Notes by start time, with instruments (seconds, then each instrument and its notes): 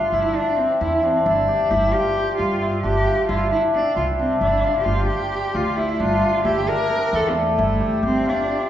Already playing: hammered dulcimer C4 D4 F4 G4, cello F4
0.12 upright bass G1, hammered dulcimer E4, cello E4
0.35 cello D4, hammered dulcimer D4
0.56 cello C4, hammered dulcimer C4
0.80 upright bass E2, cello E4, hammered dulcimer E4
1.03 cello C4, hammered dulcimer D4
1.25 upright bass G1, cello D4, hammered dulcimer E4
1.48 hammered dulcimer G4
1.70 upright bass G1, cello E4, hammered dulcimer G4
1.93 hammered dulcimer F4, cello G4
2.16 hammered dulcimer G4
2.37 upright bass G2, cello F4, hammered dulcimer F4
2.61 hammered dulcimer E4
2.83 upright bass G1, hammered dulcimer D4, cello G4
3.06 hammered dulcimer F4
3.28 upright bass G1, hammered dulcimer E4, cello F4
3.51 hammered dulcimer D4, cello E4
3.74 hammered dulcimer C4, cello D4
3.96 upright bass C2, hammered dulcimer E4, cello F4
4.19 cello C4, hammered dulcimer D4
4.41 upright bass G1, cello D4, hammered dulcimer E4
4.65 hammered dulcimer F4
4.79 cello G4
4.84 upright bass G1, cello F4, hammered dulcimer G4
5.07 hammered dulcimer F4, cello G4
5.32 hammered dulcimer G4
5.54 upright bass D2, hammered dulcimer F4, cello F4
5.77 hammered dulcimer E4, cello E4
5.99 upright bass G1, hammered dulcimer D4, cello F4
6.22 hammered dulcimer F4
6.45 upright bass G1, hammered dulcimer E4, cello G4
6.68 hammered dulcimer D4, cello A#4
6.90 hammered dulcimer C4
7.13 upright bass E2, hammered dulcimer E4, cello A4
7.30 cello A#3
7.35 cello A3, hammered dulcimer D4
7.58 upright bass G1, hammered dulcimer E4
7.80 hammered dulcimer G4
8.02 upright bass G1, cello C4, hammered dulcimer G4
8.26 cello D4, hammered dulcimer F4
8.48 hammered dulcimer G4